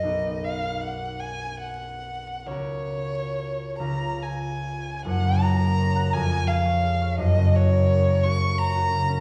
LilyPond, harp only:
\new Staff \with { instrumentName = "Harp" } { \time 6/8 \key fis \major \tempo 4. = 55 << { r2. | r2. | <fis,, fis,>16 cis16 fis'16 ais'16 cis''16 fis''16 eis,16 eis16 gis'16 cis''16 gis'16 cis''16 | <fis,, fis,>16 cis16 fis'16 ais'16 cis''16 ais'16 fis'16 cis''16 ais'16 fis'16 cis16 cis'16 | } \\ { <b,, dis' fis' ais'>2. | <cis, cis' fis' ais'>4. <cis, cis' eis' gis'>4.~ | <cis, cis' eis' gis'>2.~ | <cis, cis' eis' gis'>2. | } >> }